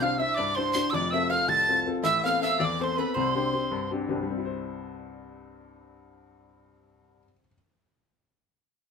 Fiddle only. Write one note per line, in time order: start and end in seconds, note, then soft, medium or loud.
0.01 0.18 F5 medium
0.20 0.39 E5 loud
0.37 0.58 D5 medium
0.56 0.93 C5 medium
0.94 1.12 D5 medium
1.14 1.32 E5 medium
1.31 1.49 F5 loud
1.49 1.84 A5 medium
2.04 2.26 E5 medium
2.25 2.62 F5 medium
2.60 2.83 D5 medium
2.81 2.98 C5 medium
2.96 3.15 B4 medium
3.15 3.87 C5 medium